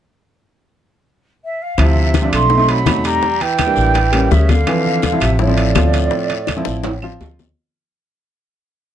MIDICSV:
0, 0, Header, 1, 6, 480
1, 0, Start_track
1, 0, Key_signature, -1, "minor"
1, 0, Tempo, 361882
1, 448, Time_signature, 4, 2, 24, 8
1, 11859, End_track
2, 0, Start_track
2, 0, Title_t, "Flute"
2, 0, Program_c, 0, 73
2, 1920, Note_on_c, 0, 76, 83
2, 2152, Note_on_c, 0, 77, 79
2, 2172, Note_off_c, 0, 76, 0
2, 2393, Note_on_c, 0, 76, 86
2, 2413, Note_off_c, 0, 77, 0
2, 3094, Note_off_c, 0, 76, 0
2, 3102, Note_on_c, 0, 84, 94
2, 3589, Note_on_c, 0, 83, 91
2, 3609, Note_off_c, 0, 84, 0
2, 4070, Note_on_c, 0, 82, 93
2, 4090, Note_off_c, 0, 83, 0
2, 4533, Note_on_c, 0, 79, 102
2, 4552, Note_off_c, 0, 82, 0
2, 5719, Note_on_c, 0, 76, 88
2, 5739, Note_off_c, 0, 79, 0
2, 5966, Note_on_c, 0, 77, 94
2, 5986, Note_off_c, 0, 76, 0
2, 6932, Note_on_c, 0, 76, 76
2, 6952, Note_off_c, 0, 77, 0
2, 7161, Note_off_c, 0, 76, 0
2, 7169, Note_on_c, 0, 74, 82
2, 9515, Note_off_c, 0, 74, 0
2, 11859, End_track
3, 0, Start_track
3, 0, Title_t, "Grand piano"
3, 0, Program_c, 1, 0
3, 2358, Note_on_c, 1, 53, 66
3, 2359, Note_on_c, 1, 60, 63
3, 2375, Note_on_c, 1, 64, 81
3, 2780, Note_off_c, 1, 53, 0
3, 2781, Note_off_c, 1, 60, 0
3, 2789, Note_off_c, 1, 64, 0
3, 2946, Note_on_c, 1, 53, 66
3, 2955, Note_on_c, 1, 60, 56
3, 2968, Note_on_c, 1, 62, 73
3, 3206, Note_off_c, 1, 53, 0
3, 3210, Note_off_c, 1, 60, 0
3, 3217, Note_off_c, 1, 62, 0
3, 3304, Note_on_c, 1, 57, 64
3, 3317, Note_on_c, 1, 60, 56
3, 3321, Note_on_c, 1, 63, 70
3, 3397, Note_off_c, 1, 57, 0
3, 3404, Note_off_c, 1, 60, 0
3, 3406, Note_off_c, 1, 63, 0
3, 3417, Note_on_c, 1, 57, 80
3, 3428, Note_on_c, 1, 60, 73
3, 3439, Note_on_c, 1, 63, 79
3, 3681, Note_off_c, 1, 57, 0
3, 3687, Note_off_c, 1, 60, 0
3, 3692, Note_off_c, 1, 63, 0
3, 3780, Note_on_c, 1, 57, 63
3, 3790, Note_on_c, 1, 60, 60
3, 3794, Note_on_c, 1, 63, 73
3, 4269, Note_off_c, 1, 57, 0
3, 4275, Note_off_c, 1, 60, 0
3, 4276, Note_off_c, 1, 63, 0
3, 4863, Note_on_c, 1, 55, 63
3, 4865, Note_on_c, 1, 58, 63
3, 4876, Note_on_c, 1, 62, 72
3, 5230, Note_off_c, 1, 55, 0
3, 5231, Note_off_c, 1, 58, 0
3, 5236, Note_off_c, 1, 62, 0
3, 5465, Note_on_c, 1, 55, 80
3, 5477, Note_on_c, 1, 58, 71
3, 5483, Note_on_c, 1, 61, 84
3, 5975, Note_off_c, 1, 55, 0
3, 5981, Note_off_c, 1, 58, 0
3, 5983, Note_off_c, 1, 61, 0
3, 6192, Note_on_c, 1, 53, 68
3, 6199, Note_on_c, 1, 60, 69
3, 6211, Note_on_c, 1, 52, 85
3, 6614, Note_off_c, 1, 53, 0
3, 6618, Note_off_c, 1, 60, 0
3, 6624, Note_off_c, 1, 52, 0
3, 6792, Note_on_c, 1, 53, 64
3, 6799, Note_on_c, 1, 60, 61
3, 6810, Note_on_c, 1, 64, 74
3, 7046, Note_off_c, 1, 53, 0
3, 7050, Note_off_c, 1, 60, 0
3, 7055, Note_off_c, 1, 64, 0
3, 7159, Note_on_c, 1, 53, 62
3, 7161, Note_on_c, 1, 60, 56
3, 7167, Note_on_c, 1, 64, 76
3, 7242, Note_off_c, 1, 53, 0
3, 7243, Note_off_c, 1, 60, 0
3, 7246, Note_off_c, 1, 64, 0
3, 7266, Note_on_c, 1, 53, 76
3, 7281, Note_on_c, 1, 60, 73
3, 7289, Note_on_c, 1, 64, 84
3, 7524, Note_off_c, 1, 53, 0
3, 7531, Note_off_c, 1, 60, 0
3, 7535, Note_off_c, 1, 64, 0
3, 7640, Note_on_c, 1, 53, 64
3, 7642, Note_on_c, 1, 60, 59
3, 7656, Note_on_c, 1, 65, 71
3, 8312, Note_off_c, 1, 53, 0
3, 8313, Note_off_c, 1, 60, 0
3, 8320, Note_off_c, 1, 65, 0
3, 8711, Note_on_c, 1, 53, 72
3, 8716, Note_on_c, 1, 60, 68
3, 8722, Note_on_c, 1, 64, 85
3, 9136, Note_off_c, 1, 53, 0
3, 9139, Note_off_c, 1, 60, 0
3, 9142, Note_off_c, 1, 64, 0
3, 9318, Note_on_c, 1, 53, 76
3, 9322, Note_on_c, 1, 60, 65
3, 9335, Note_on_c, 1, 65, 85
3, 9825, Note_off_c, 1, 53, 0
3, 9827, Note_off_c, 1, 60, 0
3, 9834, Note_off_c, 1, 65, 0
3, 11859, End_track
4, 0, Start_track
4, 0, Title_t, "Tenor saxophone"
4, 0, Program_c, 2, 66
4, 2383, Note_on_c, 2, 48, 80
4, 3079, Note_off_c, 2, 48, 0
4, 3087, Note_on_c, 2, 57, 81
4, 3563, Note_on_c, 2, 54, 86
4, 3583, Note_off_c, 2, 57, 0
4, 4050, Note_on_c, 2, 55, 82
4, 4070, Note_off_c, 2, 54, 0
4, 4534, Note_on_c, 2, 52, 73
4, 4554, Note_off_c, 2, 55, 0
4, 5719, Note_on_c, 2, 49, 66
4, 5739, Note_off_c, 2, 52, 0
4, 5972, Note_on_c, 2, 50, 77
4, 5992, Note_off_c, 2, 49, 0
4, 6905, Note_on_c, 2, 48, 65
4, 6925, Note_off_c, 2, 50, 0
4, 7151, Note_off_c, 2, 48, 0
4, 7159, Note_on_c, 2, 45, 68
4, 9510, Note_off_c, 2, 45, 0
4, 11859, End_track
5, 0, Start_track
5, 0, Title_t, "Upright bass"
5, 0, Program_c, 3, 32
5, 2364, Note_on_c, 3, 38, 79
5, 3032, Note_off_c, 3, 38, 0
5, 3084, Note_on_c, 3, 35, 80
5, 3751, Note_off_c, 3, 35, 0
5, 3794, Note_on_c, 3, 40, 83
5, 4220, Note_off_c, 3, 40, 0
5, 4997, Note_on_c, 3, 33, 78
5, 5666, Note_off_c, 3, 33, 0
5, 5715, Note_on_c, 3, 38, 84
5, 6140, Note_off_c, 3, 38, 0
5, 6920, Note_on_c, 3, 33, 89
5, 7588, Note_off_c, 3, 33, 0
5, 7633, Note_on_c, 3, 38, 85
5, 8060, Note_off_c, 3, 38, 0
5, 8842, Note_on_c, 3, 33, 82
5, 9513, Note_off_c, 3, 33, 0
5, 9555, Note_on_c, 3, 38, 80
5, 9984, Note_off_c, 3, 38, 0
5, 11859, End_track
6, 0, Start_track
6, 0, Title_t, "Drums"
6, 2357, Note_on_c, 9, 75, 54
6, 2362, Note_on_c, 9, 60, 57
6, 2366, Note_on_c, 9, 74, 62
6, 2367, Note_on_c, 9, 63, 30
6, 2376, Note_on_c, 9, 65, 80
6, 2490, Note_off_c, 9, 75, 0
6, 2495, Note_off_c, 9, 60, 0
6, 2498, Note_off_c, 9, 74, 0
6, 2499, Note_off_c, 9, 63, 0
6, 2508, Note_off_c, 9, 65, 0
6, 2603, Note_on_c, 9, 63, 32
6, 2735, Note_off_c, 9, 63, 0
6, 2839, Note_on_c, 9, 60, 52
6, 2839, Note_on_c, 9, 63, 53
6, 2847, Note_on_c, 9, 73, 58
6, 2848, Note_on_c, 9, 65, 59
6, 2971, Note_off_c, 9, 60, 0
6, 2972, Note_off_c, 9, 63, 0
6, 2979, Note_off_c, 9, 73, 0
6, 2981, Note_off_c, 9, 65, 0
6, 3084, Note_on_c, 9, 63, 31
6, 3085, Note_on_c, 9, 73, 62
6, 3087, Note_on_c, 9, 75, 59
6, 3088, Note_on_c, 9, 65, 87
6, 3217, Note_off_c, 9, 63, 0
6, 3217, Note_off_c, 9, 73, 0
6, 3220, Note_off_c, 9, 65, 0
6, 3220, Note_off_c, 9, 75, 0
6, 3314, Note_on_c, 9, 60, 60
6, 3320, Note_on_c, 9, 63, 34
6, 3327, Note_on_c, 9, 74, 58
6, 3447, Note_off_c, 9, 60, 0
6, 3453, Note_off_c, 9, 63, 0
6, 3460, Note_off_c, 9, 74, 0
6, 3556, Note_on_c, 9, 63, 30
6, 3562, Note_on_c, 9, 65, 61
6, 3688, Note_off_c, 9, 63, 0
6, 3695, Note_off_c, 9, 65, 0
6, 3794, Note_on_c, 9, 63, 69
6, 3799, Note_on_c, 9, 73, 64
6, 3801, Note_on_c, 9, 60, 60
6, 3801, Note_on_c, 9, 61, 67
6, 3804, Note_on_c, 9, 65, 79
6, 3814, Note_on_c, 9, 75, 54
6, 3926, Note_off_c, 9, 63, 0
6, 3932, Note_off_c, 9, 73, 0
6, 3933, Note_off_c, 9, 60, 0
6, 3933, Note_off_c, 9, 61, 0
6, 3937, Note_off_c, 9, 65, 0
6, 3946, Note_off_c, 9, 75, 0
6, 4035, Note_on_c, 9, 63, 27
6, 4035, Note_on_c, 9, 73, 69
6, 4046, Note_on_c, 9, 65, 65
6, 4167, Note_off_c, 9, 73, 0
6, 4168, Note_off_c, 9, 63, 0
6, 4179, Note_off_c, 9, 65, 0
6, 4265, Note_on_c, 9, 74, 60
6, 4280, Note_on_c, 9, 60, 61
6, 4283, Note_on_c, 9, 63, 30
6, 4397, Note_off_c, 9, 74, 0
6, 4412, Note_off_c, 9, 60, 0
6, 4415, Note_off_c, 9, 63, 0
6, 4525, Note_on_c, 9, 63, 32
6, 4525, Note_on_c, 9, 65, 57
6, 4657, Note_off_c, 9, 63, 0
6, 4657, Note_off_c, 9, 65, 0
6, 4745, Note_on_c, 9, 73, 66
6, 4756, Note_on_c, 9, 65, 80
6, 4763, Note_on_c, 9, 60, 51
6, 4763, Note_on_c, 9, 75, 65
6, 4767, Note_on_c, 9, 63, 55
6, 4877, Note_off_c, 9, 73, 0
6, 4889, Note_off_c, 9, 65, 0
6, 4895, Note_off_c, 9, 60, 0
6, 4895, Note_off_c, 9, 75, 0
6, 4899, Note_off_c, 9, 63, 0
6, 4984, Note_on_c, 9, 73, 58
6, 4997, Note_on_c, 9, 60, 30
6, 5013, Note_on_c, 9, 63, 29
6, 5117, Note_off_c, 9, 73, 0
6, 5129, Note_off_c, 9, 60, 0
6, 5146, Note_off_c, 9, 63, 0
6, 5227, Note_on_c, 9, 74, 60
6, 5240, Note_on_c, 9, 65, 69
6, 5246, Note_on_c, 9, 60, 56
6, 5254, Note_on_c, 9, 63, 34
6, 5360, Note_off_c, 9, 74, 0
6, 5373, Note_off_c, 9, 65, 0
6, 5379, Note_off_c, 9, 60, 0
6, 5387, Note_off_c, 9, 63, 0
6, 5473, Note_on_c, 9, 75, 56
6, 5476, Note_on_c, 9, 65, 84
6, 5488, Note_on_c, 9, 63, 29
6, 5489, Note_on_c, 9, 60, 29
6, 5606, Note_off_c, 9, 75, 0
6, 5608, Note_off_c, 9, 65, 0
6, 5621, Note_off_c, 9, 63, 0
6, 5622, Note_off_c, 9, 60, 0
6, 5719, Note_on_c, 9, 73, 63
6, 5725, Note_on_c, 9, 60, 62
6, 5725, Note_on_c, 9, 61, 81
6, 5726, Note_on_c, 9, 63, 30
6, 5852, Note_off_c, 9, 73, 0
6, 5858, Note_off_c, 9, 60, 0
6, 5858, Note_off_c, 9, 61, 0
6, 5859, Note_off_c, 9, 63, 0
6, 5956, Note_on_c, 9, 65, 57
6, 5958, Note_on_c, 9, 60, 29
6, 5958, Note_on_c, 9, 63, 70
6, 5969, Note_on_c, 9, 73, 61
6, 6089, Note_off_c, 9, 65, 0
6, 6091, Note_off_c, 9, 60, 0
6, 6091, Note_off_c, 9, 63, 0
6, 6102, Note_off_c, 9, 73, 0
6, 6193, Note_on_c, 9, 75, 51
6, 6194, Note_on_c, 9, 74, 65
6, 6195, Note_on_c, 9, 65, 71
6, 6197, Note_on_c, 9, 60, 56
6, 6205, Note_on_c, 9, 63, 31
6, 6326, Note_off_c, 9, 75, 0
6, 6327, Note_off_c, 9, 65, 0
6, 6327, Note_off_c, 9, 74, 0
6, 6330, Note_off_c, 9, 60, 0
6, 6338, Note_off_c, 9, 63, 0
6, 6452, Note_on_c, 9, 63, 31
6, 6585, Note_off_c, 9, 63, 0
6, 6663, Note_on_c, 9, 73, 68
6, 6672, Note_on_c, 9, 60, 51
6, 6676, Note_on_c, 9, 65, 59
6, 6679, Note_on_c, 9, 63, 52
6, 6796, Note_off_c, 9, 73, 0
6, 6805, Note_off_c, 9, 60, 0
6, 6809, Note_off_c, 9, 65, 0
6, 6811, Note_off_c, 9, 63, 0
6, 6902, Note_on_c, 9, 73, 68
6, 6914, Note_on_c, 9, 75, 65
6, 6917, Note_on_c, 9, 63, 29
6, 6919, Note_on_c, 9, 65, 84
6, 7035, Note_off_c, 9, 73, 0
6, 7047, Note_off_c, 9, 75, 0
6, 7049, Note_off_c, 9, 63, 0
6, 7051, Note_off_c, 9, 65, 0
6, 7150, Note_on_c, 9, 60, 61
6, 7152, Note_on_c, 9, 74, 62
6, 7155, Note_on_c, 9, 63, 32
6, 7283, Note_off_c, 9, 60, 0
6, 7285, Note_off_c, 9, 74, 0
6, 7288, Note_off_c, 9, 63, 0
6, 7394, Note_on_c, 9, 63, 29
6, 7395, Note_on_c, 9, 65, 62
6, 7527, Note_off_c, 9, 63, 0
6, 7527, Note_off_c, 9, 65, 0
6, 7628, Note_on_c, 9, 73, 62
6, 7630, Note_on_c, 9, 63, 74
6, 7631, Note_on_c, 9, 75, 62
6, 7634, Note_on_c, 9, 65, 81
6, 7636, Note_on_c, 9, 60, 67
6, 7636, Note_on_c, 9, 61, 77
6, 7760, Note_off_c, 9, 73, 0
6, 7763, Note_off_c, 9, 63, 0
6, 7764, Note_off_c, 9, 75, 0
6, 7766, Note_off_c, 9, 65, 0
6, 7768, Note_off_c, 9, 60, 0
6, 7768, Note_off_c, 9, 61, 0
6, 7869, Note_on_c, 9, 73, 64
6, 7875, Note_on_c, 9, 65, 62
6, 7880, Note_on_c, 9, 63, 29
6, 8002, Note_off_c, 9, 73, 0
6, 8008, Note_off_c, 9, 65, 0
6, 8012, Note_off_c, 9, 63, 0
6, 8103, Note_on_c, 9, 60, 58
6, 8114, Note_on_c, 9, 74, 61
6, 8120, Note_on_c, 9, 63, 30
6, 8236, Note_off_c, 9, 60, 0
6, 8247, Note_off_c, 9, 74, 0
6, 8252, Note_off_c, 9, 63, 0
6, 8354, Note_on_c, 9, 65, 63
6, 8361, Note_on_c, 9, 63, 31
6, 8487, Note_off_c, 9, 65, 0
6, 8493, Note_off_c, 9, 63, 0
6, 8584, Note_on_c, 9, 60, 54
6, 8592, Note_on_c, 9, 75, 63
6, 8594, Note_on_c, 9, 73, 66
6, 8600, Note_on_c, 9, 65, 83
6, 8606, Note_on_c, 9, 63, 52
6, 8717, Note_off_c, 9, 60, 0
6, 8725, Note_off_c, 9, 75, 0
6, 8726, Note_off_c, 9, 73, 0
6, 8733, Note_off_c, 9, 65, 0
6, 8738, Note_off_c, 9, 63, 0
6, 8821, Note_on_c, 9, 60, 90
6, 8842, Note_on_c, 9, 73, 63
6, 8851, Note_on_c, 9, 63, 28
6, 8954, Note_off_c, 9, 60, 0
6, 8974, Note_off_c, 9, 73, 0
6, 8983, Note_off_c, 9, 63, 0
6, 9066, Note_on_c, 9, 60, 89
6, 9077, Note_on_c, 9, 65, 93
6, 9082, Note_on_c, 9, 74, 58
6, 9086, Note_on_c, 9, 63, 32
6, 9199, Note_off_c, 9, 60, 0
6, 9209, Note_off_c, 9, 65, 0
6, 9215, Note_off_c, 9, 74, 0
6, 9219, Note_off_c, 9, 63, 0
6, 9315, Note_on_c, 9, 75, 61
6, 9321, Note_on_c, 9, 63, 30
6, 9448, Note_off_c, 9, 75, 0
6, 9454, Note_off_c, 9, 63, 0
6, 9559, Note_on_c, 9, 61, 64
6, 9559, Note_on_c, 9, 73, 57
6, 9560, Note_on_c, 9, 66, 82
6, 9561, Note_on_c, 9, 63, 30
6, 9692, Note_off_c, 9, 61, 0
6, 9692, Note_off_c, 9, 73, 0
6, 9693, Note_off_c, 9, 66, 0
6, 9694, Note_off_c, 9, 63, 0
6, 9804, Note_on_c, 9, 61, 60
6, 9806, Note_on_c, 9, 63, 70
6, 9806, Note_on_c, 9, 66, 65
6, 9812, Note_on_c, 9, 73, 65
6, 9937, Note_off_c, 9, 61, 0
6, 9939, Note_off_c, 9, 63, 0
6, 9939, Note_off_c, 9, 66, 0
6, 9944, Note_off_c, 9, 73, 0
6, 11859, End_track
0, 0, End_of_file